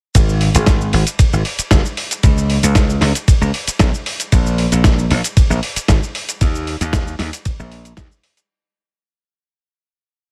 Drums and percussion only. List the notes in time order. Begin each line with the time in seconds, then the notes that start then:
0.15 kick, closed hi-hat, ride, shaker
0.29 shaker
0.41 open hi-hat
0.55 closed hi-hat, shaker
0.66 kick, snare, closed hi-hat, ride, shaker
0.81 shaker
0.93 open hi-hat
1.07 closed hi-hat, shaker
1.19 kick, closed hi-hat, ride, shaker
1.33 shaker
1.45 open hi-hat
1.59 closed hi-hat, shaker
1.71 kick, snare, closed hi-hat, ride, shaker
1.85 shaker
1.97 open hi-hat
2.11 closed hi-hat, shaker
2.23 kick, closed hi-hat, ride, shaker
2.38 shaker
2.50 open hi-hat
2.63 closed hi-hat, shaker
2.75 kick, snare, closed hi-hat, ride, shaker
2.90 shaker
3.01 snare, open hi-hat
3.15 closed hi-hat, shaker
3.28 kick, closed hi-hat, ride, shaker
3.42 shaker
3.54 open hi-hat
3.68 closed hi-hat, shaker
3.79 kick, snare, closed hi-hat, ride, shaker
3.94 shaker
4.06 open hi-hat
4.20 closed hi-hat, shaker
4.32 kick, closed hi-hat, ride, shaker
4.46 shaker
4.58 open hi-hat
4.72 closed hi-hat, shaker
4.84 kick, snare, closed hi-hat, ride, shaker
4.99 shaker
5.11 open hi-hat
5.24 closed hi-hat, shaker
5.37 kick, closed hi-hat, ride, shaker
5.51 shaker
5.63 open hi-hat
5.76 closed hi-hat, shaker
5.88 kick, snare, closed hi-hat, ride, shaker
6.03 shaker
6.15 open hi-hat
6.29 closed hi-hat, shaker
6.41 kick, closed hi-hat, ride, shaker
6.55 shaker
6.67 open hi-hat
6.81 closed hi-hat, shaker
6.93 kick, snare, closed hi-hat, ride, shaker
7.07 shaker
7.19 snare, open hi-hat
7.33 closed hi-hat, shaker
7.45 kick, closed hi-hat, ride, shaker
7.60 shaker
7.72 open hi-hat
7.85 closed hi-hat, shaker
7.97 kick, snare, closed hi-hat, ride, shaker
8.12 shaker
8.23 open hi-hat
8.37 closed hi-hat, shaker